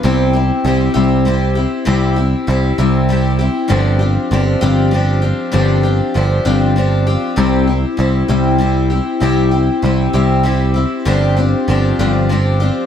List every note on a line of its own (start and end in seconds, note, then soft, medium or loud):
0.03 0.50 C2 loud
0.03 0.34 C3 medium
0.03 0.34 G3 medium
0.03 0.34 C4 medium
0.03 0.34 E4 medium
0.03 0.32 G4 medium
0.33 0.64 C4 medium
0.33 0.65 E4 medium
0.33 0.64 G4 medium
0.64 0.88 C2 medium
0.64 0.94 G3 medium
0.64 0.94 C4 medium
0.64 0.93 E4 medium
0.64 0.93 G4 medium
0.94 1.65 C2 medium
0.94 1.26 C3 medium
0.94 1.24 G3 medium
0.94 1.25 C4 medium
0.94 1.25 E4 medium
0.94 1.25 G4 medium
1.25 1.56 G3 medium
1.25 1.56 C4 medium
1.25 1.56 E4 medium
1.25 1.54 G4 medium
1.55 1.85 C4 soft
1.55 1.85 E4 medium
1.55 1.86 G4 medium
1.85 2.34 C2 loud
1.85 2.17 C3 medium
1.85 2.17 G3 medium
1.85 2.17 C4 medium
1.85 2.17 E4 medium
1.85 2.15 G4 medium
2.16 2.47 C4 soft
2.16 2.48 E4 medium
2.16 2.47 G4 medium
2.47 2.71 C2 loud
2.47 2.78 G3 medium
2.47 2.78 C4 medium
2.47 2.77 E4 medium
2.47 2.77 G4 medium
2.78 3.48 C2 medium
2.78 3.10 C3 medium
2.78 3.08 G3 medium
2.78 3.09 C4 medium
2.78 3.09 E4 medium
2.78 3.09 G4 medium
3.09 3.39 G3 medium
3.09 3.40 C4 medium
3.09 3.40 E4 medium
3.09 3.38 G4 medium
3.39 3.68 C4 soft
3.39 3.70 E4 medium
3.39 3.69 G4 medium
3.68 4.17 G1 loud
3.68 4.00 G2 medium
3.68 4.00 D3 medium
3.68 4.00 F3 medium
3.68 4.00 C4 medium
3.68 4.00 D4 medium
3.68 3.98 G4 loud
3.99 4.30 F3 soft
3.99 4.30 C4 medium
3.99 4.31 D4 medium
3.99 4.30 G4 medium
4.31 4.55 G1 medium
4.31 4.62 F3 medium
4.31 4.61 C4 medium
4.31 4.61 D4 medium
4.31 4.60 G4 medium
4.61 5.32 G1 loud
4.61 4.94 G2 medium
4.61 4.93 D3 medium
4.61 4.90 F3 medium
4.61 4.92 C4 medium
4.61 4.93 D4 medium
4.61 4.92 G4 medium
4.91 5.22 F3 medium
4.91 5.23 C4 medium
4.91 5.22 D4 medium
4.91 5.21 G4 medium
5.22 5.51 F3 soft
5.22 5.52 C4 medium
5.22 5.52 D4 medium
5.22 5.53 G4 medium
5.52 6.00 G1 loud
5.52 5.83 G2 medium
5.52 5.83 D3 medium
5.52 5.84 F3 medium
5.52 5.84 C4 medium
5.52 5.84 D4 medium
5.52 5.82 G4 medium
5.83 6.13 F3 soft
5.83 6.14 C4 medium
5.83 6.15 D4 medium
5.83 6.14 G4 medium
6.14 6.39 G1 medium
6.14 6.45 F3 medium
6.14 6.45 C4 medium
6.14 6.44 D4 medium
6.14 6.44 G4 medium
6.45 7.15 G1 medium
6.45 6.77 G2 medium
6.45 6.77 D3 medium
6.45 6.75 F3 medium
6.45 6.76 C4 medium
6.45 6.76 D4 medium
6.45 6.76 G4 medium
6.76 7.07 F3 medium
6.76 7.07 C4 medium
6.76 7.06 D4 medium
6.76 7.06 G4 medium
7.07 7.36 F3 soft
7.07 7.36 C4 medium
7.07 7.37 D4 medium
7.07 7.37 G4 medium
7.36 7.84 C2 loud
7.36 7.67 C3 medium
7.36 7.68 G3 medium
7.36 7.68 C4 medium
7.36 7.68 E4 medium
7.36 7.66 G4 medium
7.67 7.97 C4 soft
7.67 7.98 E4 medium
7.67 7.98 G4 medium
7.97 8.22 C2 medium
7.97 8.29 G3 medium
7.97 8.28 C4 medium
7.97 8.28 E4 medium
7.97 8.27 G4 medium
8.28 8.99 C2 medium
8.28 8.61 C3 medium
8.28 8.57 G3 medium
8.28 8.58 C4 medium
8.28 8.60 E4 medium
8.28 8.60 G4 medium
8.58 8.90 G3 medium
8.58 8.91 C4 medium
8.58 8.90 E4 medium
8.58 8.89 G4 medium
8.90 9.20 C4 soft
8.90 9.21 E4 medium
8.90 9.21 G4 medium
9.20 9.68 C2 loud
9.20 9.52 C3 medium
9.20 9.52 G3 medium
9.20 9.52 C4 medium
9.20 9.52 E4 medium
9.20 9.50 G4 medium
9.51 9.82 C4 soft
9.51 9.83 E4 medium
9.51 9.83 G4 medium
9.82 10.07 C2 loud
9.82 10.14 G3 medium
9.82 10.14 C4 medium
9.82 10.13 E4 medium
9.82 10.12 G4 medium
10.13 10.84 C2 medium
10.13 10.46 C3 medium
10.13 10.42 G3 medium
10.13 10.44 C4 medium
10.13 10.44 E4 medium
10.13 10.45 G4 medium
10.43 10.75 G3 medium
10.43 10.76 C4 medium
10.43 10.75 E4 medium
10.43 10.73 G4 medium
10.74 11.05 C4 medium
10.74 11.06 E4 medium
10.74 11.06 G4 medium
11.05 11.53 G1 medium
11.05 11.37 G2 medium
11.05 11.37 D3 medium
11.05 11.37 F3 medium
11.05 11.37 C4 medium
11.05 11.36 D4 medium
11.05 11.35 G4 loud
11.37 11.67 F3 soft
11.37 11.68 C4 medium
11.37 11.68 D4 medium
11.37 11.68 G4 medium
11.68 11.92 G1 loud
11.68 11.99 F3 medium
11.68 11.98 C4 medium
11.68 11.98 D4 medium
11.68 11.98 G4 medium
11.99 12.70 G1 medium
11.99 12.31 G2 medium
11.99 12.31 D3 medium
11.99 12.28 F3 medium
11.99 12.29 C4 medium
11.99 12.30 D4 medium
11.99 12.30 G4 medium
12.29 12.61 F3 medium
12.29 12.61 C4 medium
12.29 12.60 D4 medium
12.29 12.59 G4 medium
12.60 12.86 F3 soft
12.60 12.86 C4 medium
12.60 12.86 D4 medium
12.60 12.86 G4 medium